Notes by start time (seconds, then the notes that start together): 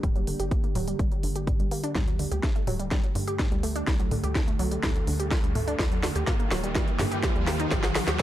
Already playing: D3 G3 A#3 G4
0.03 D1 G3, kick, closed hi-hat, mid tom
0.16 F#3, closed hi-hat
0.27 D3, open hi-hat
0.40 G1 G4, closed hi-hat
0.51 A#3, kick, closed hi-hat
0.64 A#3, closed hi-hat
0.75 D1 F#3, mid tom, open hi-hat
0.88 G3, closed hi-hat
0.99 G1 G3, kick, closed hi-hat
1.12 closed hi-hat
1.23 G1 D3, open hi-hat
1.36 G4, closed hi-hat
1.47 G3, kick, closed hi-hat, mid tom
1.60 G1 G3, closed hi-hat
1.71 A#3, open hi-hat
1.84 D4, closed hi-hat
1.95 D2 G3 A3, kick, snare, closed hi-hat, mid tom, riser
2.08 F#3, closed hi-hat
2.19 D3, open hi-hat
2.32 D2 G4, closed hi-hat
2.43 A3, kick, snare, closed hi-hat
2.56 A3, closed hi-hat
2.67 D1 F#3, mid tom, open hi-hat
2.79 G3, closed hi-hat
2.91 G2 G3, kick, snare, closed hi-hat
3.04 closed hi-hat
3.15 G2 D3, open hi-hat
3.28 G4, closed hi-hat
3.39 G3, kick, snare, closed hi-hat, mid tom
3.52 D2 G3, closed hi-hat
3.63 A3, open hi-hat
3.76 D4, closed hi-hat
3.87 C2 G3 A4, kick, snare, closed hi-hat
4.00 F#3, closed hi-hat
4.11 D3, mid tom, open hi-hat
4.24 D2 G4, closed hi-hat
4.35 A3, kick, snare, closed hi-hat
4.48 A3, closed hi-hat
4.59 C2 F#3, open hi-hat
4.72 G3, closed hi-hat
4.83 D2 G3, kick, snare, closed hi-hat, mid tom
4.96 closed hi-hat
5.07 D2 D3, open hi-hat
5.20 G4, closed hi-hat
5.31 G3, kick, snare, closed hi-hat
5.44 D2 G3, closed hi-hat
5.55 A3, mid tom, open hi-hat
5.68 D4, closed hi-hat
5.79 D#2 D#3 G3 A#3 G4, kick, snare, closed hi-hat
5.92 F#3, closed hi-hat
6.03 D3, snare, open hi-hat
6.16 D#2 G4, closed hi-hat
6.27 A#3, kick, snare, closed hi-hat, mid tom
6.40 A#3, closed hi-hat
6.51 D#1 F#3, snare, open hi-hat
6.64 G3, closed hi-hat
6.75 G2 G3, kick, snare, closed hi-hat
6.88 closed hi-hat
6.99 G2 D3, snare, mid tom, open hi-hat
7.12 G4, closed hi-hat
7.23 G3, kick, snare, closed hi-hat
7.36 D#2 G3, closed hi-hat
7.47 A#3, snare, open hi-hat
7.60 D#4, closed hi-hat
7.71 A#1 G3, kick, snare, closed hi-hat, mid tom
7.84 F#3, snare, closed hi-hat
7.95 D3, snare, open hi-hat
8.08 D#2 G4, snare, closed hi-hat